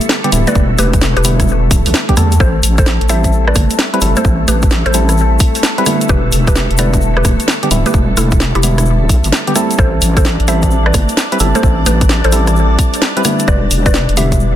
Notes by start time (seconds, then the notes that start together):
Already playing: D3 G3 A3 B3 E4 A4
0.01 closed hi-hat, shaker
0.09 snare, shaker
0.24 D3 G3 B3 G4, closed hi-hat
0.32 D1 D3 G3 B3 E4, open hi-hat, shaker
0.47 B4 D5, closed hi-hat, high conga, shaker
0.55 E1, kick, shaker
0.78 E1 G4 B4, open hi-hat, high conga, shaker
0.93 kick, closed hi-hat, shaker
1.01 snare, shaker
1.17 E1 G4 B4, closed hi-hat
1.24 D3 G3 B3 E4, open hi-hat, shaker
1.40 kick, cross-stick, closed hi-hat, shaker
1.48 shaker
1.71 D1, kick, open hi-hat, shaker
1.86 B1, open hi-hat, shaker
1.94 snare, shaker
2.09 D3 G3 B3 G4, kick, closed hi-hat
2.17 E2 D3 G3 B3 A4, cross-stick, open hi-hat, high conga, shaker
2.32 closed hi-hat, shaker
2.40 A1 A3 A4 C5, kick, shaker
2.63 A1, open hi-hat, shaker
2.78 A4 C5, kick, closed hi-hat, shaker
2.86 snare, shaker
3.01 A1, closed hi-hat
3.09 G3 C4 E4 A4 C5 E5, open hi-hat, shaker
3.24 kick, closed hi-hat, shaker
3.32 shaker
3.47 B4 D5, cross-stick
3.55 G1, kick, cross-stick, open hi-hat, high conga, shaker
3.70 closed hi-hat, shaker
3.78 snare, shaker
3.94 G3 C4 E4 B4, closed hi-hat
4.01 G1 G3 C4 E4 A4, open hi-hat, shaker
4.16 A4 C5, closed hi-hat, high conga, shaker
4.25 A1, kick, shaker
4.48 A1 G4 B4, open hi-hat, high conga, shaker
4.62 kick, closed hi-hat, shaker
4.70 snare, shaker
4.86 A1 A4 C5, closed hi-hat
4.94 G3 C4 E4 A4, open hi-hat, shaker
5.09 cross-stick, closed hi-hat, shaker
5.17 shaker
5.39 kick, open hi-hat, shaker
5.55 open hi-hat, shaker
5.63 snare, shaker
5.78 G3 C4 E4 B4, closed hi-hat
5.86 D3 G3 B3 E4, cross-stick, open hi-hat, high conga, shaker
6.01 closed hi-hat, shaker
6.09 E1 G4 B4, kick, shaker
6.32 E1, open hi-hat, shaker
6.47 G4 B4, kick, closed hi-hat, shaker
6.55 snare, shaker
6.70 E1, closed hi-hat
6.78 D3 G3 B3 E4 B4 D5, open hi-hat, shaker
6.93 kick, closed hi-hat, shaker
7.01 shaker
7.17 G4 B4, cross-stick
7.25 D1, kick, cross-stick, open hi-hat, high conga, shaker
7.40 closed hi-hat, shaker
7.48 snare, shaker
7.63 D3 G3 B3 G4, closed hi-hat
7.71 D1 D3 G3 B3 E4, open hi-hat, shaker
7.86 G4 B4, closed hi-hat, high conga, shaker
7.94 E1, kick, shaker
8.17 E1 E4 A4, open hi-hat, high conga, shaker
8.31 kick, closed hi-hat, shaker
8.40 snare, shaker
8.55 E1 E4 G4, closed hi-hat
8.63 D3 G3 B3 E4, open hi-hat, shaker
8.78 cross-stick, closed hi-hat, shaker
8.85 shaker
9.01 D1
9.09 B1, kick, open hi-hat, shaker
9.24 G1, open hi-hat, shaker
9.32 snare, shaker
9.47 D3 G3 B3 G4, closed hi-hat
9.56 G3 C4 E4 A4, cross-stick, open hi-hat, high conga, shaker
9.71 closed hi-hat, shaker
9.79 A1 D4 A4 C5 D5, kick
10.02 A1, open hi-hat, shaker
10.17 A4 C5, kick, closed hi-hat, shaker
10.25 snare, shaker
10.40 A1, closed hi-hat
10.48 G3 C4 E4 A4 C5 E5, open hi-hat, shaker
10.62 kick, closed hi-hat, shaker
10.71 shaker
10.86 B4 D5, cross-stick
10.94 G1, kick, cross-stick, open hi-hat, high conga, shaker
11.09 closed hi-hat, shaker
11.17 snare, shaker
11.32 G3 C4 E4 B4, closed hi-hat
11.40 G1 G3 C4 E4 A4, open hi-hat, shaker
11.55 A4 C5, closed hi-hat, high conga, shaker
11.63 A1, kick, shaker
11.86 A1 G4 B4, open hi-hat, high conga, shaker
12.01 kick, closed hi-hat, shaker
12.09 snare, shaker
12.24 A1 A4 C5, closed hi-hat
12.32 G3 C4 E4 A4, open hi-hat, shaker
12.47 cross-stick, closed hi-hat, shaker
12.56 shaker
12.79 kick, open hi-hat, shaker
12.94 open hi-hat, shaker
13.01 snare, shaker
13.17 G3 C4 E4 B4, closed hi-hat
13.24 D3 G3 B3 E4, cross-stick, open hi-hat, high conga, shaker
13.39 closed hi-hat, shaker
13.48 E1 B4 D5, kick, shaker
13.71 E1, open hi-hat, shaker
13.86 B4 D5, kick, closed hi-hat, shaker
13.93 snare, shaker
14.09 E1, closed hi-hat
14.17 D3 G3 B3 E4 G4 E5, open hi-hat, shaker
14.32 kick, closed hi-hat, shaker
14.40 shaker